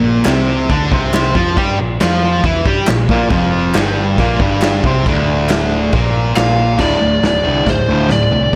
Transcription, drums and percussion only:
0.25 snare, clap, crash
0.69 kick, crash
0.92 kick
1.13 snare, clap, crash
1.35 kick
1.57 kick, crash
2.00 snare, clap, crash
2.44 kick, crash
2.66 kick
2.87 snare, clap, crash
3.09 kick
3.30 kick, crash
3.74 snare, clap, crash
4.18 kick, crash
4.40 kick
4.62 snare, clap, crash
4.84 kick
5.06 kick, crash
5.49 snare, clap, crash
5.93 kick, crash
6.36 snare, clap, crash
6.79 kick, snare, floor tom, crash
7.01 floor tom
7.23 snare, floor tom
7.44 floor tom
7.66 kick, snare, floor tom
7.88 floor tom
8.09 snare, floor tom
8.31 floor tom

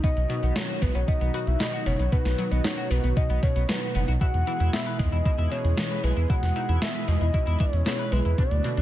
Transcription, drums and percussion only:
0.04 kick, closed hi-hat
0.17 closed hi-hat
0.30 closed hi-hat
0.43 closed hi-hat
0.56 snare, closed hi-hat
0.69 closed hi-hat
0.82 kick, open hi-hat
0.95 closed hi-hat
1.08 kick, closed hi-hat
1.21 closed hi-hat
1.34 closed hi-hat
1.47 closed hi-hat
1.60 snare, closed hi-hat
1.73 closed hi-hat
1.86 open hi-hat
1.99 closed hi-hat
2.12 kick, closed hi-hat
2.25 snare, closed hi-hat
2.38 closed hi-hat
2.51 closed hi-hat
2.64 snare, closed hi-hat
2.78 closed hi-hat
2.91 open hi-hat
3.04 closed hi-hat
3.17 kick, closed hi-hat
3.30 closed hi-hat
3.43 kick, closed hi-hat
3.56 closed hi-hat
3.69 snare, closed hi-hat
3.82 closed hi-hat
3.95 open hi-hat
4.08 closed hi-hat
4.21 kick, closed hi-hat
4.34 closed hi-hat
4.47 closed hi-hat
4.60 closed hi-hat
4.73 snare, closed hi-hat
4.86 closed hi-hat
4.99 kick, open hi-hat
5.12 closed hi-hat
5.25 kick, closed hi-hat
5.39 closed hi-hat
5.52 closed hi-hat
5.65 closed hi-hat
5.78 snare, closed hi-hat
5.91 closed hi-hat
6.04 open hi-hat
6.17 closed hi-hat
6.30 kick, closed hi-hat
6.43 snare, closed hi-hat
6.56 closed hi-hat
6.69 closed hi-hat
6.82 snare, closed hi-hat
6.95 closed hi-hat
7.08 open hi-hat
7.21 closed hi-hat
7.34 kick, closed hi-hat
7.47 closed hi-hat
7.60 kick, closed hi-hat
7.73 closed hi-hat
7.86 snare, closed hi-hat
7.99 closed hi-hat
8.12 open hi-hat
8.25 closed hi-hat
8.38 kick, closed hi-hat
8.51 closed hi-hat
8.64 closed hi-hat
8.77 closed hi-hat

